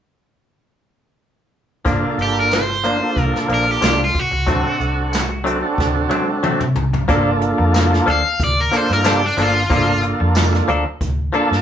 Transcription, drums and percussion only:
1.86 kick medium
1.86 closed hi-hat medium
2.18 closed hi-hat soft
2.51 snare medium
2.51 closed hi-hat medium
2.51 tambourine medium
2.84 closed hi-hat medium
3.17 kick medium
3.17 closed hi-hat medium
3.36 snare soft
3.49 closed hi-hat medium
3.82 snare loud
3.82 closed hi-hat medium
3.82 tambourine loud
4.15 kick medium
4.15 closed hi-hat medium
4.47 kick medium
4.47 closed hi-hat medium
4.80 closed hi-hat soft
5.13 snare loud
5.13 closed hi-hat medium
5.13 tambourine medium
5.46 closed hi-hat medium
5.78 kick medium
5.78 snare medium
6.11 high tom medium
6.44 mid tom medium
6.60 mid tom medium
6.76 floor tom medium
6.93 floor tom medium
7.08 kick loud
7.08 closed hi-hat medium
7.42 closed hi-hat medium
7.74 snare medium
7.74 closed hi-hat medium
7.74 tambourine loud
7.94 snare soft
8.07 closed hi-hat medium
8.40 kick medium
8.40 closed hi-hat medium
8.73 closed hi-hat medium
8.92 snare soft
9.04 snare loud
9.04 closed hi-hat medium
9.04 tambourine loud
9.38 closed hi-hat medium
9.70 kick medium
9.70 closed hi-hat medium
10.03 closed hi-hat medium
10.35 snare loud
10.35 closed hi-hat medium
10.35 tambourine loud
10.55 snare soft
10.68 closed hi-hat medium
11.01 kick medium
11.01 closed hi-hat medium
11.33 closed hi-hat medium
11.53 snare soft

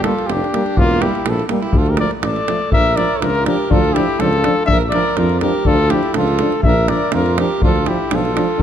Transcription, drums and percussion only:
0.04 davul high medium
0.19 davul high soft
0.30 davul high medium
0.44 davul high soft
0.54 davul high medium
0.66 davul high soft
0.77 davul low medium
0.91 davul high soft
1.02 davul high medium
1.15 davul high soft
1.26 davul high medium
1.39 davul high soft
1.49 davul high medium
1.63 davul high soft
1.73 davul low medium
1.86 davul high soft
1.97 davul high medium
2.11 davul high soft
2.23 davul high medium
2.36 davul high soft
2.48 davul high medium
2.72 davul low loud
2.86 davul high soft
2.97 davul high medium
3.22 davul high medium
3.35 davul high soft
3.46 davul high medium
3.71 davul low medium
3.84 davul high soft
3.96 davul high medium
4.20 davul high medium
4.33 davul high soft
4.44 davul high medium
4.68 davul low loud
4.81 davul high soft
4.92 davul high medium
5.17 davul high medium
5.29 davul high soft
5.41 davul high medium
5.65 davul low medium
5.79 davul high soft
5.90 davul high medium
6.03 davul high soft
6.14 davul high medium
6.28 davul high soft
6.39 davul high medium
6.52 davul high soft
6.63 davul low medium
6.88 davul high medium
7.12 davul high medium
7.26 davul high soft
7.38 davul high medium
7.62 davul low loud
7.76 davul high soft
7.86 davul high medium
8.11 davul high medium
8.25 davul high soft
8.37 davul high medium

